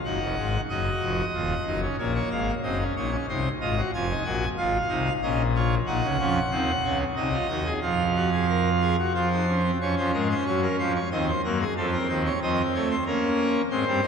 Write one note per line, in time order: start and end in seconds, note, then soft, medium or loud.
0.05 0.19 F#1 medium
0.05 0.19 F#2 medium
0.05 0.61 D#4 medium
0.05 0.61 F#5 medium
0.21 0.35 F1 medium
0.21 0.35 F2 medium
0.37 0.57 G#1 medium
0.37 0.57 G#2 medium
0.69 0.89 F#1 medium
0.69 0.89 F#2 medium
0.69 1.25 F#4 medium
0.69 1.81 D#5 medium
1.01 1.22 F1 medium
1.01 1.22 F2 medium
1.34 1.54 D#1 medium
1.34 1.54 D#2 medium
1.34 1.54 F4 medium
1.66 1.86 F#1 medium
1.66 1.86 F#2 medium
1.66 1.80 D#4 medium
1.82 1.96 C#4 medium
1.98 2.19 A#1 medium
1.98 2.19 A#2 medium
1.98 2.54 A#3 medium
1.98 2.13 C#5 medium
2.15 2.29 C#5 medium
2.31 2.51 G#1 medium
2.31 2.51 G#2 medium
2.31 2.51 F5 medium
2.63 2.84 F#1 medium
2.63 2.84 F#2 medium
2.63 2.77 C4 medium
2.63 2.83 D#5 medium
2.80 2.94 C#4 medium
2.96 3.16 A#1 medium
2.96 3.16 A#2 medium
2.96 3.10 D#4 medium
2.96 3.16 C#5 medium
3.12 3.26 C#4 medium
3.29 3.49 C2 medium
3.29 3.49 C3 medium
3.29 3.49 D#4 medium
3.29 3.49 C5 medium
3.61 3.81 G#1 medium
3.61 3.81 G#2 medium
3.61 3.74 F4 medium
3.61 3.81 D#5 medium
3.77 3.91 F#4 medium
3.93 4.13 F1 medium
3.93 4.13 F2 medium
3.93 4.07 F4 medium
3.93 4.49 G#5 medium
4.10 4.23 D#4 medium
4.25 4.45 A#1 medium
4.25 4.45 A#2 medium
4.25 4.45 F#4 medium
4.57 4.77 G#1 medium
4.57 4.77 G#2 medium
4.57 4.78 F4 medium
4.57 5.13 F5 medium
4.89 5.09 C2 medium
4.89 5.09 C3 medium
4.89 5.09 D#4 medium
5.22 5.78 A#1 medium
5.22 5.78 A#2 medium
5.22 5.42 C#4 medium
5.22 5.42 D#5 medium
5.55 5.75 F4 medium
5.55 5.75 C#5 medium
5.86 6.00 A#1 medium
5.86 6.00 A#2 medium
5.86 6.07 D#4 medium
5.86 6.98 F#5 medium
6.03 6.17 C#2 medium
6.03 6.17 C#3 medium
6.19 6.39 F2 medium
6.19 6.39 F3 medium
6.19 6.39 C#4 medium
6.51 6.72 D#2 medium
6.51 6.71 D#3 medium
6.51 6.71 C4 medium
6.84 7.04 C#2 medium
6.84 7.04 C#3 medium
6.84 7.04 C#4 medium
7.16 7.36 C2 medium
7.16 7.36 C3 medium
7.16 7.30 D#4 medium
7.16 7.73 D#5 medium
7.33 7.47 F4 medium
7.49 7.69 D#2 medium
7.49 7.69 D#3 medium
7.49 7.63 F#4 medium
7.65 7.79 G#4 medium
7.82 8.96 F2 medium
7.82 8.96 F3 medium
7.82 8.02 F4 medium
7.82 8.96 F5 medium
8.15 8.30 F#4 medium
8.32 8.46 G#4 medium
8.49 8.69 A#4 medium
8.82 8.96 G#4 medium
8.99 9.13 F#4 medium
9.14 9.71 F2 medium
9.14 9.71 F3 medium
9.14 9.29 F4 medium
9.14 9.71 C5 medium
9.31 9.45 D#4 medium
9.48 9.62 C#4 medium
9.64 9.78 C4 medium
9.81 9.95 F2 medium
9.81 9.95 F3 medium
9.81 10.93 C#4 medium
9.81 9.95 C#5 medium
9.97 10.11 F2 medium
9.97 10.11 F3 medium
9.97 10.11 C5 medium
10.14 10.34 G#2 medium
10.14 10.34 G#3 medium
10.14 10.28 A#4 medium
10.31 10.44 C5 medium
10.47 10.67 F#2 loud
10.47 10.66 F#3 loud
10.47 10.60 C#5 medium
10.62 10.76 A#4 medium
10.79 10.99 F2 medium
10.79 10.99 F3 medium
10.79 10.92 C5 medium
10.95 11.09 C#5 medium
11.11 11.31 D#2 medium
11.11 11.31 D#3 medium
11.11 11.31 C4 medium
11.11 11.25 D#5 medium
11.28 11.41 C5 medium
11.44 11.64 F#2 medium
11.44 11.64 F#3 medium
11.44 11.64 A#3 medium
11.44 11.58 A#4 medium
11.60 11.74 G#4 medium
11.77 11.97 F2 loud
11.77 11.97 F3 medium
11.77 12.32 C4 medium
11.77 11.90 A4 medium
11.93 12.07 A#4 medium
12.09 12.29 D#2 medium
12.09 12.29 D#3 medium
12.09 12.23 C5 medium
12.26 12.39 C#5 medium
12.42 12.62 F2 medium
12.42 12.62 F3 medium
12.42 12.97 C4 medium
12.42 12.62 D#5 medium
12.75 12.94 A3 medium
12.75 12.88 C#5 medium
12.91 13.04 C5 medium
13.06 13.62 A#3 loud
13.06 13.62 C#4 medium
13.06 13.61 A#4 medium
13.71 13.84 G#2 medium
13.71 13.84 G#3 medium
13.71 13.84 C4 medium
13.71 14.07 C5 medium
13.87 14.01 G2 medium
13.87 14.01 G3 medium
13.87 14.00 C4 medium
14.03 14.07 F2 medium
14.03 14.07 F3 medium
14.03 14.07 D#4 loud